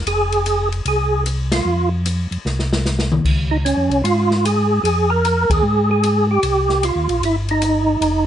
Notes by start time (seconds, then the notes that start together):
0.06 F1 G#4, ride
0.32 ride
0.46 hi-hat pedal, ride
0.72 ride
0.85 C2 G#4, ride
1.26 hi-hat pedal, ride
1.52 F4, snare, ride
1.65 F2
2.06 hi-hat pedal, ride
2.31 F2, ride
2.45 C2, snare
2.59 snare
2.73 snare
2.85 snare, hi-hat pedal
2.99 snare
3.12 mid tom
3.25 C#2, kick, crash
3.51 D#4
3.65 C#4, hi-hat pedal, ride
3.77 F2
3.90 C2, ride
4.04 G#2 F4, ride
4.31 snare
4.45 G#4, hi-hat pedal, ride
4.83 F2 G#4, ride
5.10 A#4
5.25 hi-hat pedal, ride
5.50 D#2 G#4, kick, ride
5.63 G#2
5.91 G#4
6.03 hi-hat pedal, ride
6.31 G4
6.42 C2, ride
6.69 snare
6.83 F4, hi-hat pedal, ride
6.95 D#2
7.09 A#1, ride
7.21 G1, ride
7.25 E4
7.49 D#4, ride
7.62 hi-hat pedal, ride
8.01 F1, ride